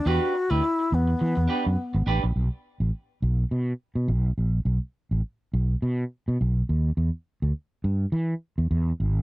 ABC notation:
X:1
M:4/4
L:1/16
Q:"Swing 16ths" 1/4=104
K:Edor
V:1 name="Clean electric guitar"
[DGBd]2 z [DGBd] z6 [DGBd] z3 [DGBd] z | z16 | z16 | z16 |]
V:2 name="Alto flute"
F3 E3 B,8 z2 | z16 | z16 | z16 |]
V:3 name="Fretless electric bass" clef=bass
E,, z2 D,, z2 E,,2 E, E,, z F,, z ^G,,, A,,, ^A,,, | B,,, z2 A,,, z2 B,,,2 B,,2 z B,, B,,,2 ^A,,,2 | B,,, z2 A,,, z2 B,,,2 B,,2 z B,, B,,,2 ^D,,2 | E,, z2 D,, z2 G,,2 E,2 z E,, E,,2 ^G,,,2 |]